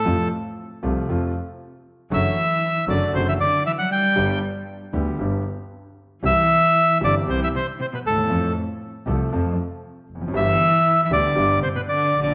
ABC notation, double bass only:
X:1
M:4/4
L:1/8
Q:1/4=117
K:Flyd
V:1 name="Double bass" clef=bass
F,, z2 C,, F,, z3 | ^F,,, z2 F,,, F,,, z3 | G,,, z2 D,, G,,, z3 | C,, z2 G,,, C,, z2 _E,, |
F,, z2 C,, F,, z2 F,,, | G,,, z2 D,, G,,, z2 _B,,, |]